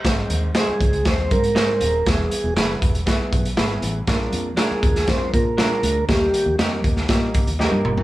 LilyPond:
<<
  \new Staff \with { instrumentName = "Tonewheel organ" } { \time 4/4 \key aes \major \tempo 4 = 119 r4 aes'4 c''8 bes'4. | gis'4 r2. | r4 aes'4 c''8 bes'4. | g'4 r2. | }
  \new Staff \with { instrumentName = "Clean electric guitar" } { \time 4/4 \key aes \major r4 <ees' aes' c''>16 r4. r16 <ees' aes' c''>16 r8. | r4 <e' gis' b'>16 r4. r16 <e' gis' b'>16 r8. | r4 <d' aes' bes'>16 r4. r16 <d' aes' bes'>16 r8. | r4 <ees' g' bes'>16 r4. r16 <ees' g' bes'>16 r8. | }
  \new Staff \with { instrumentName = "Upright piano" } { \time 4/4 \key aes \major <c' ees' aes' c''>8. r16 <c' ees' aes' c''>8. r16 <c' ees' aes' c''>8. r16 <c' ees' aes' c''>8. r16 | <b e' gis' b'>8. r16 <b e' gis' b'>8. r16 <b e' gis' b'>8. r16 <b e' gis' b'>8. r16 | <d' f' aes' bes'>8. r16 <d' f' aes' bes'>8. r16 <d' f' aes' bes'>8. r16 <des' d' f' aes' bes'>8. r16 | <bes ees' g' aes' bes'>8. r16 <bes ees' g' bes'>8. r16 <bes ees' g' bes'>8. r16 <bes ees' g' aes' bes'>8. r16 | }
  \new Staff \with { instrumentName = "Upright piano" } { \clef bass \time 4/4 \key aes \major aes,4. r2 r8 | e4. r2 r8 | bes,4. r2 r8 | ees4. r2 r8 | }
  \new Staff \with { instrumentName = "Fingered electric bass" } { \clef bass \time 4/4 \key aes \major aes,,8 ees,8 r8 des,8 ees,8 aes,4 ees,,8 | e,,8 r16 e,,16 ges,,8 e,,8 r8 b,,8 gis,,8 a,,8 | bes,,8 f,8 r8 ees,8 f,8 bes,4 d,8 | ees,8 r16 ees,16 f,8 ees,8 bes,8 r16 ees,8 g,16 g,,8 | }
  \new DrumStaff \with { instrumentName = "Drums" } \drummode { \time 4/4 <hh bd sn>8 hh8 <hh sn>8 <hh bd>16 hh16 <hh bd sn>8 <hh bd>16 hh16 <hh sn>8 hh8 | <hh bd sn>8 hh8 <hh sn>8 <hh bd>16 hh16 <hh bd sn>8 <hh bd>16 hh16 <hh sn>8 hh8 | <hh bd sn>8 hh8 <hh sn>8 <hh bd>16 <hh sn>16 <hh bd sn>8 <hh bd>8 <hh sn>8 hh8 | <hh bd sn>8 hh8 <hh sn>8 <hh bd>16 sn16 <hh bd sn>8 <hh bd>16 hh16 sn8 toml16 tomfh16 | }
>>